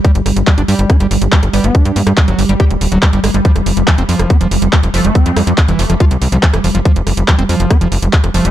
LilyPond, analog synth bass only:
\new Staff \with { instrumentName = "Analog synth bass" } { \clef bass \time 4/4 \tempo 4 = 141 r16 g,,16 g,,16 g,,16 r16 g,,16 g,16 g,,16 r16 g,,16 g,,16 g,,16 r16 g,,16 g,,16 g,,16 | r16 g,16 g,16 g,16 r16 g,,16 g,,16 g,,16 r16 d,,16 d,,16 d,,16 r16 g,,16 g,,16 g,,16 | r16 f,,16 f,,16 f,,16 r16 f,,16 f,16 f,,16 r16 f,,16 f,,16 f,,16 r16 f,,16 f,,16 f,,16 | r16 f,16 f,16 f,16 r16 f,,16 f,,16 f,,16 r16 c,16 c,16 c,16 r16 f,,16 f,,16 f,,16 |
r16 f,,16 f,,16 f,,16 r16 f,,16 f,16 f,,16 r16 f,,16 f,,16 f,,16 r16 f,,16 f,,16 f,,16 | }